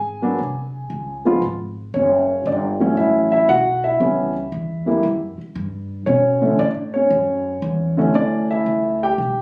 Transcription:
Already playing: upright bass G#1, grand piano G#4 G#5
0.22 grand piano F#3 A#3 B3 D4
0.38 upright bass C2
0.90 upright bass C#2
1.25 grand piano F3 G#3 B3 F4
1.42 upright bass G#1
1.94 upright bass F#1, grand piano C#4 C#5
2.45 upright bass G1, grand piano D4 D5
2.80 grand piano E3 F#3 A3 C#4
2.97 upright bass A1, grand piano E4 E5
3.32 grand piano E4 E5
3.49 upright bass B1, grand piano F#4 F#5
3.84 grand piano E4 E5
4.00 upright bass C#2, grand piano E3 G3 B3 C#4
4.52 upright bass E2
4.86 grand piano E3 G3 A#3 E4
5.03 upright bass F#2
5.38 muted upright bass stroke
5.55 upright bass G2
6.06 upright bass B2, grand piano C#4 C#5
6.41 grand piano D3 E3 A3 C#4
6.59 upright bass A2, grand piano D4 D5
6.94 grand piano C#4 C#5
7.10 upright bass F#2
7.62 upright bass E2
7.97 grand piano D3 E3 A3 C#4
8.14 upright bass D2, grand piano E3 A3 C#4 D4 D5
8.51 grand piano E4 E5
8.66 upright bass C#2
9.03 grand piano G4 G5
9.18 upright bass B1

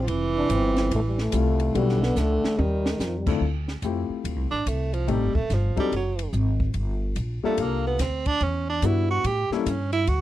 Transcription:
0.02 tenor saxophone F3
0.07 upright bass F1, tenor saxophone E3, kick, ride
0.37 trombone D4
0.49 upright bass G1, trombone C4, kick, hi-hat pedal, ride
0.76 snare, ride
0.91 upright bass A1, trombone A3, kick, ride
1.07 trombone G3
1.18 trombone A3, snare
1.32 upright bass C2, grand piano G3 A3 C4 E4 F4, kick, hi-hat pedal, ride
1.60 ride
1.73 upright bass B1, tenor saxophone D3, grand piano G3 B3 D4 E4 F#4, trombone G3, kick, ride
1.89 snare
2.03 trombone B3, snare
2.16 upright bass C#2, trombone A3, snare, hi-hat pedal
2.44 muted upright bass stroke, snare
2.57 upright bass D#2, tenor saxophone D#3, trombone G3, high tom
2.86 snare
2.91 trombone A3
2.98 upright bass F2, trombone G3, snare, hi-hat pedal
3.05 trombone F3
3.18 trombone G3
3.27 grand piano D3 A3 C4 E4 F4 A4, kick, crash
3.41 upright bass D2, kick
3.68 snare
3.82 upright bass F2, grand piano A3 C4 E4 F4 G4, kick, hi-hat pedal, ride
4.09 muted upright bass stroke
4.24 upright bass D2, kick, ride
4.36 upright bass C2
4.51 upright bass A1, tenor saxophone D4
4.66 upright bass C2, tenor saxophone A3, kick, hi-hat pedal, ride
4.93 tenor saxophone F3, ride
5.07 upright bass A1, tenor saxophone G3, grand piano A3 C4 D#4 G4 A4, kick, ride
5.22 upright bass G1
5.35 upright bass D#1, tenor saxophone A3, kick
5.50 upright bass G1, kick, snare, hi-hat pedal, ride
5.54 tenor saxophone F3
5.76 grand piano F#3 C4 D4 D#4 A4, tenor saxophone G3, muted upright bass stroke, kick, ride
5.92 upright bass F#1, kick, ride
5.96 tenor saxophone F#3
6.19 ride
6.33 upright bass G#1, kick, hi-hat pedal
6.60 kick
6.74 upright bass G1, kick, ride
7.16 upright bass A#1, kick, hi-hat pedal, ride
7.43 grand piano G3 A#3 D4 F4 A4, tenor saxophone A3, muted upright bass stroke
7.58 upright bass C2, kick, ride
7.62 tenor saxophone A#3
7.87 tenor saxophone B3
7.99 upright bass D2, tenor saxophone C4, kick, snare, hi-hat pedal, ride
8.26 tenor saxophone D4, kick, ride
8.41 upright bass E2, tenor saxophone C#4, kick, ride
8.69 tenor saxophone D4
8.82 upright bass G2, grand piano G3 B3 D4 E4 F#4, tenor saxophone E4, kick, hi-hat pedal, ride
9.11 tenor saxophone F#4
9.24 upright bass A2, tenor saxophone G4, kick, ride
9.50 grand piano G3 A#3 C#4 E4 A4, tenor saxophone A#3, muted upright bass stroke, snare
9.66 upright bass G2, tenor saxophone C#4, kick, hi-hat pedal, ride
9.92 tenor saxophone E4, ride
10.07 upright bass D2, tenor saxophone F#4, kick, ride

